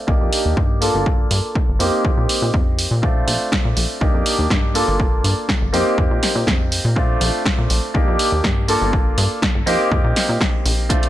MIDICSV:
0, 0, Header, 1, 4, 480
1, 0, Start_track
1, 0, Tempo, 491803
1, 1037, Time_signature, 4, 2, 24, 8
1, 10826, End_track
2, 0, Start_track
2, 0, Title_t, "Grand piano"
2, 0, Program_c, 0, 0
2, 68, Note_on_c, 0, 58, 76
2, 73, Note_on_c, 0, 62, 70
2, 79, Note_on_c, 0, 63, 69
2, 84, Note_on_c, 0, 67, 85
2, 747, Note_off_c, 0, 58, 0
2, 750, Note_off_c, 0, 62, 0
2, 753, Note_off_c, 0, 63, 0
2, 755, Note_off_c, 0, 67, 0
2, 787, Note_on_c, 0, 58, 74
2, 792, Note_on_c, 0, 62, 71
2, 797, Note_on_c, 0, 65, 69
2, 803, Note_on_c, 0, 69, 83
2, 1707, Note_off_c, 0, 58, 0
2, 1709, Note_off_c, 0, 62, 0
2, 1712, Note_off_c, 0, 65, 0
2, 1715, Note_off_c, 0, 69, 0
2, 1748, Note_on_c, 0, 58, 88
2, 1754, Note_on_c, 0, 60, 82
2, 1759, Note_on_c, 0, 63, 80
2, 1763, Note_on_c, 0, 67, 97
2, 2907, Note_off_c, 0, 58, 0
2, 2910, Note_off_c, 0, 60, 0
2, 2912, Note_off_c, 0, 63, 0
2, 2915, Note_off_c, 0, 67, 0
2, 2949, Note_on_c, 0, 57, 74
2, 2955, Note_on_c, 0, 60, 71
2, 2959, Note_on_c, 0, 62, 71
2, 2965, Note_on_c, 0, 65, 85
2, 3867, Note_off_c, 0, 57, 0
2, 3871, Note_off_c, 0, 60, 0
2, 3873, Note_off_c, 0, 62, 0
2, 3876, Note_off_c, 0, 65, 0
2, 3911, Note_on_c, 0, 58, 73
2, 3915, Note_on_c, 0, 62, 69
2, 3920, Note_on_c, 0, 63, 69
2, 3928, Note_on_c, 0, 67, 84
2, 4588, Note_off_c, 0, 58, 0
2, 4591, Note_off_c, 0, 62, 0
2, 4593, Note_off_c, 0, 63, 0
2, 4597, Note_off_c, 0, 67, 0
2, 4629, Note_on_c, 0, 58, 77
2, 4635, Note_on_c, 0, 62, 71
2, 4639, Note_on_c, 0, 65, 71
2, 4644, Note_on_c, 0, 69, 83
2, 5547, Note_off_c, 0, 58, 0
2, 5551, Note_off_c, 0, 62, 0
2, 5553, Note_off_c, 0, 65, 0
2, 5555, Note_off_c, 0, 69, 0
2, 5588, Note_on_c, 0, 58, 86
2, 5593, Note_on_c, 0, 60, 81
2, 5599, Note_on_c, 0, 63, 79
2, 5603, Note_on_c, 0, 67, 97
2, 6747, Note_off_c, 0, 58, 0
2, 6750, Note_off_c, 0, 60, 0
2, 6752, Note_off_c, 0, 63, 0
2, 6755, Note_off_c, 0, 67, 0
2, 6789, Note_on_c, 0, 57, 75
2, 6793, Note_on_c, 0, 60, 69
2, 6799, Note_on_c, 0, 62, 69
2, 6803, Note_on_c, 0, 65, 86
2, 7708, Note_off_c, 0, 57, 0
2, 7710, Note_off_c, 0, 60, 0
2, 7713, Note_off_c, 0, 62, 0
2, 7715, Note_off_c, 0, 65, 0
2, 7750, Note_on_c, 0, 58, 78
2, 7755, Note_on_c, 0, 62, 70
2, 7760, Note_on_c, 0, 63, 68
2, 7766, Note_on_c, 0, 67, 83
2, 8428, Note_off_c, 0, 58, 0
2, 8431, Note_off_c, 0, 62, 0
2, 8433, Note_off_c, 0, 63, 0
2, 8436, Note_off_c, 0, 67, 0
2, 8471, Note_on_c, 0, 58, 76
2, 8476, Note_on_c, 0, 62, 71
2, 8481, Note_on_c, 0, 65, 70
2, 8487, Note_on_c, 0, 69, 84
2, 9389, Note_off_c, 0, 58, 0
2, 9391, Note_off_c, 0, 62, 0
2, 9394, Note_off_c, 0, 65, 0
2, 9397, Note_off_c, 0, 69, 0
2, 9430, Note_on_c, 0, 58, 88
2, 9434, Note_on_c, 0, 60, 83
2, 9439, Note_on_c, 0, 63, 82
2, 9445, Note_on_c, 0, 67, 99
2, 10588, Note_off_c, 0, 58, 0
2, 10590, Note_off_c, 0, 60, 0
2, 10593, Note_off_c, 0, 63, 0
2, 10596, Note_off_c, 0, 67, 0
2, 10631, Note_on_c, 0, 57, 77
2, 10635, Note_on_c, 0, 60, 69
2, 10641, Note_on_c, 0, 62, 71
2, 10646, Note_on_c, 0, 65, 84
2, 10826, Note_off_c, 0, 57, 0
2, 10826, Note_off_c, 0, 60, 0
2, 10826, Note_off_c, 0, 62, 0
2, 10826, Note_off_c, 0, 65, 0
2, 10826, End_track
3, 0, Start_track
3, 0, Title_t, "Analog synth bass"
3, 0, Program_c, 1, 38
3, 77, Note_on_c, 1, 36, 86
3, 177, Note_off_c, 1, 36, 0
3, 204, Note_on_c, 1, 41, 91
3, 294, Note_off_c, 1, 41, 0
3, 445, Note_on_c, 1, 39, 87
3, 534, Note_off_c, 1, 39, 0
3, 556, Note_on_c, 1, 43, 96
3, 881, Note_off_c, 1, 43, 0
3, 924, Note_on_c, 1, 31, 98
3, 1240, Note_off_c, 1, 31, 0
3, 1277, Note_on_c, 1, 43, 97
3, 1377, Note_off_c, 1, 43, 0
3, 1645, Note_on_c, 1, 31, 77
3, 1734, Note_off_c, 1, 31, 0
3, 1758, Note_on_c, 1, 41, 78
3, 1858, Note_off_c, 1, 41, 0
3, 1997, Note_on_c, 1, 41, 87
3, 2097, Note_off_c, 1, 41, 0
3, 2123, Note_on_c, 1, 46, 91
3, 2213, Note_off_c, 1, 46, 0
3, 2363, Note_on_c, 1, 46, 87
3, 2453, Note_off_c, 1, 46, 0
3, 2477, Note_on_c, 1, 41, 99
3, 2801, Note_off_c, 1, 41, 0
3, 2841, Note_on_c, 1, 46, 97
3, 3158, Note_off_c, 1, 46, 0
3, 3195, Note_on_c, 1, 34, 96
3, 3296, Note_off_c, 1, 34, 0
3, 3563, Note_on_c, 1, 46, 76
3, 3653, Note_off_c, 1, 46, 0
3, 3678, Note_on_c, 1, 34, 79
3, 3777, Note_off_c, 1, 34, 0
3, 3917, Note_on_c, 1, 36, 89
3, 4017, Note_off_c, 1, 36, 0
3, 4043, Note_on_c, 1, 41, 94
3, 4133, Note_off_c, 1, 41, 0
3, 4282, Note_on_c, 1, 39, 88
3, 4373, Note_off_c, 1, 39, 0
3, 4396, Note_on_c, 1, 43, 96
3, 4721, Note_off_c, 1, 43, 0
3, 4764, Note_on_c, 1, 31, 96
3, 5079, Note_off_c, 1, 31, 0
3, 5116, Note_on_c, 1, 43, 99
3, 5216, Note_off_c, 1, 43, 0
3, 5483, Note_on_c, 1, 31, 76
3, 5573, Note_off_c, 1, 31, 0
3, 5597, Note_on_c, 1, 41, 81
3, 5697, Note_off_c, 1, 41, 0
3, 5836, Note_on_c, 1, 41, 86
3, 5937, Note_off_c, 1, 41, 0
3, 5963, Note_on_c, 1, 46, 92
3, 6053, Note_off_c, 1, 46, 0
3, 6202, Note_on_c, 1, 46, 86
3, 6293, Note_off_c, 1, 46, 0
3, 6315, Note_on_c, 1, 41, 96
3, 6640, Note_off_c, 1, 41, 0
3, 6684, Note_on_c, 1, 46, 98
3, 6999, Note_off_c, 1, 46, 0
3, 7037, Note_on_c, 1, 34, 100
3, 7137, Note_off_c, 1, 34, 0
3, 7403, Note_on_c, 1, 46, 77
3, 7493, Note_off_c, 1, 46, 0
3, 7517, Note_on_c, 1, 34, 79
3, 7617, Note_off_c, 1, 34, 0
3, 7756, Note_on_c, 1, 36, 86
3, 7857, Note_off_c, 1, 36, 0
3, 7883, Note_on_c, 1, 41, 95
3, 7973, Note_off_c, 1, 41, 0
3, 8123, Note_on_c, 1, 39, 90
3, 8213, Note_off_c, 1, 39, 0
3, 8237, Note_on_c, 1, 43, 99
3, 8561, Note_off_c, 1, 43, 0
3, 8603, Note_on_c, 1, 31, 97
3, 8919, Note_off_c, 1, 31, 0
3, 8957, Note_on_c, 1, 43, 98
3, 9057, Note_off_c, 1, 43, 0
3, 9323, Note_on_c, 1, 31, 78
3, 9414, Note_off_c, 1, 31, 0
3, 9436, Note_on_c, 1, 41, 81
3, 9536, Note_off_c, 1, 41, 0
3, 9677, Note_on_c, 1, 41, 85
3, 9777, Note_off_c, 1, 41, 0
3, 9802, Note_on_c, 1, 46, 92
3, 9893, Note_off_c, 1, 46, 0
3, 10043, Note_on_c, 1, 46, 90
3, 10134, Note_off_c, 1, 46, 0
3, 10398, Note_on_c, 1, 34, 83
3, 10722, Note_off_c, 1, 34, 0
3, 10826, End_track
4, 0, Start_track
4, 0, Title_t, "Drums"
4, 77, Note_on_c, 9, 36, 119
4, 174, Note_off_c, 9, 36, 0
4, 318, Note_on_c, 9, 46, 103
4, 415, Note_off_c, 9, 46, 0
4, 557, Note_on_c, 9, 36, 119
4, 654, Note_off_c, 9, 36, 0
4, 798, Note_on_c, 9, 46, 93
4, 895, Note_off_c, 9, 46, 0
4, 1037, Note_on_c, 9, 36, 120
4, 1134, Note_off_c, 9, 36, 0
4, 1277, Note_on_c, 9, 46, 107
4, 1374, Note_off_c, 9, 46, 0
4, 1517, Note_on_c, 9, 36, 120
4, 1615, Note_off_c, 9, 36, 0
4, 1757, Note_on_c, 9, 46, 90
4, 1855, Note_off_c, 9, 46, 0
4, 1997, Note_on_c, 9, 36, 118
4, 2095, Note_off_c, 9, 36, 0
4, 2238, Note_on_c, 9, 46, 102
4, 2335, Note_off_c, 9, 46, 0
4, 2477, Note_on_c, 9, 36, 121
4, 2575, Note_off_c, 9, 36, 0
4, 2719, Note_on_c, 9, 46, 92
4, 2816, Note_off_c, 9, 46, 0
4, 2957, Note_on_c, 9, 36, 113
4, 3055, Note_off_c, 9, 36, 0
4, 3198, Note_on_c, 9, 46, 101
4, 3296, Note_off_c, 9, 46, 0
4, 3437, Note_on_c, 9, 36, 115
4, 3441, Note_on_c, 9, 38, 105
4, 3534, Note_off_c, 9, 36, 0
4, 3539, Note_off_c, 9, 38, 0
4, 3677, Note_on_c, 9, 46, 88
4, 3774, Note_off_c, 9, 46, 0
4, 3917, Note_on_c, 9, 36, 115
4, 4014, Note_off_c, 9, 36, 0
4, 4157, Note_on_c, 9, 46, 100
4, 4254, Note_off_c, 9, 46, 0
4, 4396, Note_on_c, 9, 36, 115
4, 4402, Note_on_c, 9, 38, 107
4, 4494, Note_off_c, 9, 36, 0
4, 4500, Note_off_c, 9, 38, 0
4, 4638, Note_on_c, 9, 46, 90
4, 4735, Note_off_c, 9, 46, 0
4, 4877, Note_on_c, 9, 36, 110
4, 4974, Note_off_c, 9, 36, 0
4, 5119, Note_on_c, 9, 46, 96
4, 5216, Note_off_c, 9, 46, 0
4, 5356, Note_on_c, 9, 36, 110
4, 5361, Note_on_c, 9, 38, 105
4, 5454, Note_off_c, 9, 36, 0
4, 5459, Note_off_c, 9, 38, 0
4, 5599, Note_on_c, 9, 46, 85
4, 5697, Note_off_c, 9, 46, 0
4, 5836, Note_on_c, 9, 36, 111
4, 5934, Note_off_c, 9, 36, 0
4, 6078, Note_on_c, 9, 46, 99
4, 6082, Note_on_c, 9, 38, 57
4, 6176, Note_off_c, 9, 46, 0
4, 6180, Note_off_c, 9, 38, 0
4, 6316, Note_on_c, 9, 36, 112
4, 6323, Note_on_c, 9, 38, 108
4, 6414, Note_off_c, 9, 36, 0
4, 6420, Note_off_c, 9, 38, 0
4, 6558, Note_on_c, 9, 46, 88
4, 6656, Note_off_c, 9, 46, 0
4, 6796, Note_on_c, 9, 36, 107
4, 6894, Note_off_c, 9, 36, 0
4, 7038, Note_on_c, 9, 46, 95
4, 7135, Note_off_c, 9, 46, 0
4, 7276, Note_on_c, 9, 36, 110
4, 7281, Note_on_c, 9, 38, 109
4, 7374, Note_off_c, 9, 36, 0
4, 7379, Note_off_c, 9, 38, 0
4, 7515, Note_on_c, 9, 46, 84
4, 7613, Note_off_c, 9, 46, 0
4, 7756, Note_on_c, 9, 36, 109
4, 7854, Note_off_c, 9, 36, 0
4, 7996, Note_on_c, 9, 46, 97
4, 8094, Note_off_c, 9, 46, 0
4, 8237, Note_on_c, 9, 36, 110
4, 8240, Note_on_c, 9, 38, 109
4, 8335, Note_off_c, 9, 36, 0
4, 8337, Note_off_c, 9, 38, 0
4, 8476, Note_on_c, 9, 46, 84
4, 8574, Note_off_c, 9, 46, 0
4, 8717, Note_on_c, 9, 36, 114
4, 8815, Note_off_c, 9, 36, 0
4, 8957, Note_on_c, 9, 46, 101
4, 9055, Note_off_c, 9, 46, 0
4, 9197, Note_on_c, 9, 36, 113
4, 9201, Note_on_c, 9, 38, 113
4, 9295, Note_off_c, 9, 36, 0
4, 9299, Note_off_c, 9, 38, 0
4, 9438, Note_on_c, 9, 46, 85
4, 9535, Note_off_c, 9, 46, 0
4, 9678, Note_on_c, 9, 36, 113
4, 9775, Note_off_c, 9, 36, 0
4, 9919, Note_on_c, 9, 46, 95
4, 9923, Note_on_c, 9, 38, 61
4, 10017, Note_off_c, 9, 46, 0
4, 10021, Note_off_c, 9, 38, 0
4, 10157, Note_on_c, 9, 36, 111
4, 10163, Note_on_c, 9, 38, 112
4, 10255, Note_off_c, 9, 36, 0
4, 10261, Note_off_c, 9, 38, 0
4, 10400, Note_on_c, 9, 46, 88
4, 10498, Note_off_c, 9, 46, 0
4, 10637, Note_on_c, 9, 36, 115
4, 10639, Note_on_c, 9, 42, 79
4, 10735, Note_off_c, 9, 36, 0
4, 10736, Note_off_c, 9, 42, 0
4, 10765, Note_on_c, 9, 42, 52
4, 10826, Note_off_c, 9, 42, 0
4, 10826, End_track
0, 0, End_of_file